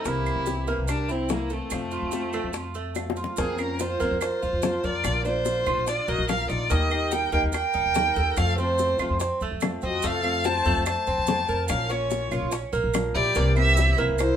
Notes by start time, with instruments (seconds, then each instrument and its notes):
0.05 upright bass C2, steel-string acoustic guitar C3 E3 A#3 C4 E4, cuban tres A#3, violin E4, flute G4, high bongo, maracas
0.26 claves, maracas
0.36 upright bass C2
0.46 cuban tres G4, high bongo, maracas
0.67 steel-string acoustic guitar E3 A#3 C4 E4, cuban tres A#3, maracas
0.78 upright bass C2
0.88 violin D4, flute G4, muted steel-string acoustic guitar stroke, high bongo, claves, maracas
1.09 violin C4, cuban tres E4, flute E4, maracas
1.29 steel-string acoustic guitar E3 A#3 C4 E4, flute E4, high bongo, low bongo, maracas
1.33 violin A#3
1.49 violin A3, flute C4, cuban tres A4, maracas
1.70 upright bass F2, steel-string acoustic guitar C3 F3 A3 C4 F4, high bongo, claves, maracas
1.91 cuban tres F4, maracas
2.02 upright bass F2
2.12 high bongo, maracas
2.33 steel-string acoustic guitar F3 A3 C4 F4, cuban tres A3, high bongo, claves, maracas
2.44 upright bass F2
2.53 cuban tres F4, muted steel-string acoustic guitar stroke, high bongo, maracas
2.74 cuban tres A3, high bongo, maracas
2.95 steel-string acoustic guitar F3 A3 C4 F4, high bongo, claves, maracas
3.10 high bongo
3.16 cuban tres F4, maracas
3.24 low bongo
3.37 upright bass F2, steel-string acoustic guitar F3 A#3 C4 F4, cuban tres A#3, flute C4, violin G#4, high bongo, maracas
3.58 steel-string acoustic guitar A#3 C4 F4, flute C#4, violin A#4, claves, maracas
3.79 flute F4, cuban tres F4, violin C5, high bongo, maracas
4.00 upright bass F2, cuban tres A#3, steel-string acoustic guitar A#3 C4 F4, maracas
4.11 upright bass F2
4.21 flute F4, violin C5, muted steel-string acoustic guitar stroke, high bongo, claves, maracas
4.42 upright bass F2, cuban tres F4, maracas
4.53 upright bass F2
4.62 steel-string acoustic guitar F3 A#3 C4 F4, high bongo, low bongo, maracas
4.84 upright bass F2, flute F4, cuban tres A#4, violin D5, maracas
5.04 upright bass A#1, steel-string acoustic guitar D3 A#3 D4 F4, high bongo, claves, maracas
5.24 steel-string acoustic guitar A#3 D4 F4, cuban tres D4, flute F4, violin C5, high bongo, maracas
5.45 high bongo, maracas
5.66 upright bass A#1, steel-string acoustic guitar A#3 D4 F4, cuban tres F4, high bongo, claves, maracas
5.77 upright bass A#1
5.87 cuban tres D4, flute F4, violin D5, muted steel-string acoustic guitar stroke, high bongo, maracas
6.08 upright bass A#1, cuban tres A#3, flute F#4, violin D#5, maracas
6.19 upright bass A#1
6.28 steel-string acoustic guitar D3 A#3 D4 F4, flute A#4, violin F5, high bongo, low bongo, claves, maracas
6.49 upright bass A#1, cuban tres D#4, flute F4, violin D5, high bongo, maracas
6.69 upright bass D#2, steel-string acoustic guitar D#3 G3 A#3 D#4 G4, cuban tres A#3, flute G4, violin D#5, high bongo, maracas
6.91 steel-string acoustic guitar G3 A#3 D#4 G4, claves, maracas
7.11 cuban tres D#4, flute A#4, violin G5, high bongo, maracas
7.32 upright bass D#2, steel-string acoustic guitar G3 A#3 D#4 G4, cuban tres A#3, flute A#4, violin G5, maracas
7.43 upright bass D#2
7.52 flute A#4, violin G5, muted steel-string acoustic guitar stroke, high bongo, claves, maracas
7.73 upright bass D#2, cuban tres D#4, maracas
7.86 upright bass D#2
7.94 steel-string acoustic guitar G3 A#3 D#4 G4, high bongo, low bongo, maracas
8.16 upright bass D#2, cuban tres A4, maracas
8.36 upright bass F2, steel-string acoustic guitar C3 F3 A3 C4 F4, flute A4, violin F5, high bongo, claves, maracas
8.57 steel-string acoustic guitar F3 A3 C4 F4, cuban tres C4, flute F4, violin C5, high bongo, maracas
8.78 high bongo, maracas
8.99 upright bass F2, steel-string acoustic guitar F3 A3 C4 F4, cuban tres F4, high bongo, claves, maracas
9.10 upright bass F2
9.20 cuban tres C4, muted steel-string acoustic guitar stroke, high bongo, maracas
9.40 upright bass F2, cuban tres A3, maracas
9.52 upright bass F2
9.61 steel-string acoustic guitar F3 A3 C4 F4, high bongo, low bongo, claves, maracas
9.81 upright bass F2, cuban tres C4, violin D#5, high bongo, maracas
9.86 flute F#4
10.02 upright bass F2, steel-string acoustic guitar C3 F3 A3 C4 F4, cuban tres A3, flute A4, violin F5, high bongo, maracas
10.23 steel-string acoustic guitar F3 A3 C4 F4, claves, maracas
10.44 cuban tres C4, flute C5, violin A5, high bongo, maracas
10.65 upright bass F2, steel-string acoustic guitar F3 A3 C4 F4, cuban tres A3, maracas
10.86 flute C5, violin A5, muted steel-string acoustic guitar stroke, high bongo, claves, maracas
11.07 upright bass F2, cuban tres C4, maracas
11.18 upright bass F2
11.26 steel-string acoustic guitar F3 A3 C4 F4, high bongo, low bongo, maracas
11.48 upright bass F2, cuban tres A#4, maracas
11.68 upright bass A#1, steel-string acoustic guitar F3 A#3 C#4 F4, flute A#4, violin F5, high bongo, claves, maracas
11.89 steel-string acoustic guitar A#3 C#4 F4, cuban tres C#4, flute F4, violin C#5, high bongo, maracas
12.10 high bongo, maracas
12.31 upright bass A#1, steel-string acoustic guitar A#3 C#4 F4, cuban tres F4, high bongo, claves, maracas
12.42 upright bass A#1
12.51 cuban tres C#4, muted steel-string acoustic guitar stroke, high bongo, maracas
12.73 upright bass A#1, cuban tres A#3, maracas
12.84 upright bass A#1
12.93 steel-string acoustic guitar F3 A#3 C#4 F4, high bongo, low bongo, claves, maracas
13.15 upright bass A#1, cuban tres E4, flute G4, violin D5, high bongo, maracas
13.35 upright bass C2, steel-string acoustic guitar C3 E3 A#3 C4 E4, cuban tres A#3, high bongo, maracas
13.55 steel-string acoustic guitar E3 A#3 C4 E4, flute G4, violin E5, claves, maracas
13.77 cuban tres E4, high bongo, maracas
13.98 upright bass C2, steel-string acoustic guitar E3 A#3 C4 E4, cuban tres A#3, maracas
14.09 upright bass C2
14.18 flute E4, violin C5, muted steel-string acoustic guitar stroke, high bongo, claves, maracas